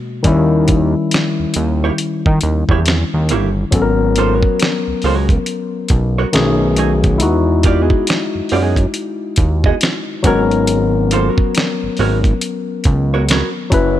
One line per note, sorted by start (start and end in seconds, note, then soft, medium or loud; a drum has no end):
0.00 0.19 B2 medium
0.00 0.20 G#3 medium
0.00 0.21 A#3 medium
0.00 0.22 F#4 medium
0.23 0.95 D#2 loud
0.23 3.67 D#3 medium
0.23 3.68 G3 medium
0.23 3.69 C#4 medium
0.23 kick medium
0.23 closed hi-hat medium
0.27 3.70 E4 medium
0.68 kick loud
0.68 closed hi-hat medium
1.11 snare loud
1.11 closed hi-hat medium
1.40 1.46 D#2 soft
1.54 1.91 D#2 medium
1.54 closed hi-hat medium
1.84 1.92 A#3 soft
1.84 1.92 E4 soft
1.84 1.92 G4 medium
1.84 1.92 C#5 medium
1.98 closed hi-hat medium
2.26 2.39 D#3 medium
2.26 kick medium
2.41 2.64 D#2 medium
2.41 closed hi-hat medium
2.69 3.04 E2 medium
2.69 2.79 A#3 soft
2.69 2.79 E4 medium
2.69 2.79 G4 medium
2.69 2.79 C#5 medium
2.69 kick medium
2.86 muted hollow-body jazz guitar stroke soft
2.86 snare loud
2.86 closed hi-hat medium
3.14 3.32 D#2 medium
3.29 3.65 G1 medium
3.29 3.48 A#3 medium
3.29 3.48 E4 medium
3.29 3.49 G4 medium
3.29 3.49 C#5 medium
3.29 closed hi-hat medium
3.71 4.43 G#1 loud
3.71 6.28 F#3 medium
3.71 6.29 B3 medium
3.71 6.30 C#4 medium
3.71 kick medium
3.71 closed hi-hat medium
3.75 3.82 A4 medium
3.82 6.34 A#4 medium
4.16 4.34 A#3 medium
4.16 4.34 F4 medium
4.16 4.35 A4 medium
4.16 4.35 C5 medium
4.16 closed hi-hat medium
4.34 4.57 B3 medium
4.34 4.58 F#4 medium
4.34 4.58 A#4 medium
4.34 4.58 C#5 medium
4.43 kick medium
4.59 muted hollow-body jazz guitar stroke soft
4.59 snare loud
4.59 closed hi-hat medium
4.88 4.94 C#2 soft
5.02 5.38 C#2 medium
5.02 5.28 B3 medium
5.02 5.29 F#4 medium
5.02 5.29 A#4 medium
5.02 open hi-hat soft
5.06 5.29 C#5 medium
5.29 kick medium
5.29 closed hi-hat soft
5.46 closed hi-hat medium
5.88 6.25 B1 medium
5.88 kick medium
5.88 closed hi-hat medium
6.18 6.27 B3 soft
6.18 6.27 F#4 medium
6.18 6.26 A#4 medium
6.18 6.26 C#5 medium
6.33 7.23 B1 loud
6.33 7.20 D#3 medium
6.33 7.20 A3 medium
6.33 7.21 C#4 medium
6.33 7.21 G#4 medium
6.33 snare loud
6.33 closed hi-hat medium
6.76 6.92 A3 medium
6.76 6.92 D#4 medium
6.76 6.92 G#4 medium
6.76 6.92 C#5 medium
6.76 closed hi-hat medium
7.04 kick medium
7.04 closed hi-hat soft
7.18 7.91 E2 loud
7.18 10.20 G#3 medium
7.18 10.21 D#4 medium
7.18 10.19 E4 medium
7.18 closed hi-hat medium
7.23 10.22 F#4 medium
7.63 7.81 A#3 medium
7.63 7.82 F4 medium
7.63 7.82 G4 medium
7.63 7.82 D5 medium
7.63 kick loud
7.63 closed hi-hat medium
7.81 8.05 B3 medium
7.81 8.05 F#4 medium
7.81 8.05 G#4 medium
7.81 8.06 D#5 medium
7.90 kick medium
8.07 muted hollow-body jazz guitar stroke soft
8.07 snare loud
8.07 closed hi-hat medium
8.35 8.41 F#2 soft
8.49 8.86 F#2 medium
8.49 8.76 B3 medium
8.49 8.76 F#4 medium
8.49 8.76 G#4 medium
8.49 open hi-hat medium
8.53 8.77 D#5 medium
8.76 kick medium
8.76 closed hi-hat soft
8.94 closed hi-hat medium
9.36 9.73 D#2 medium
9.36 kick medium
9.36 closed hi-hat medium
9.64 9.74 B3 medium
9.64 9.74 F#4 medium
9.64 9.74 G#4 medium
9.64 9.74 D#5 medium
9.64 kick medium
9.81 snare loud
9.81 closed hi-hat medium
10.23 11.30 G#1 loud
10.23 13.67 F#3 medium
10.23 13.68 B3 medium
10.23 10.39 B3 medium
10.23 13.69 C#4 medium
10.23 10.39 F#4 medium
10.23 10.40 A#4 medium
10.23 kick loud
10.23 closed hi-hat medium
10.27 13.69 A#4 medium
10.27 10.40 C#5 medium
10.51 closed hi-hat soft
10.67 closed hi-hat medium
11.11 11.29 A#3 medium
11.11 11.29 F4 medium
11.11 11.29 A4 medium
11.11 11.30 C5 medium
11.11 closed hi-hat medium
11.29 11.53 B3 medium
11.29 11.53 F#4 medium
11.29 11.53 A#4 medium
11.29 11.53 C#5 medium
11.38 kick loud
11.55 muted hollow-body jazz guitar stroke soft
11.55 snare loud
11.55 closed hi-hat medium
11.83 11.89 G#1 soft
11.97 12.34 G#1 loud
11.97 12.17 B3 medium
11.97 12.18 F#4 medium
11.97 12.18 A#4 medium
11.97 12.18 C#5 medium
11.97 open hi-hat medium
12.24 kick medium
12.24 closed hi-hat soft
12.41 closed hi-hat medium
12.84 13.43 C#2 medium
12.84 kick medium
12.84 closed hi-hat medium
13.14 13.22 B3 soft
13.14 13.22 F#4 soft
13.14 13.22 A#4 medium
13.14 13.22 C#5 medium
13.29 13.48 B3 medium
13.29 13.48 F#4 medium
13.29 13.48 A#4 medium
13.29 13.49 C#5 medium
13.29 snare loud
13.29 closed hi-hat medium
13.70 14.00 F#1 loud
13.70 14.00 F#3 medium
13.70 14.00 C#4 medium
13.70 14.00 E4 medium
13.70 kick loud
13.70 closed hi-hat medium
13.74 14.00 B4 medium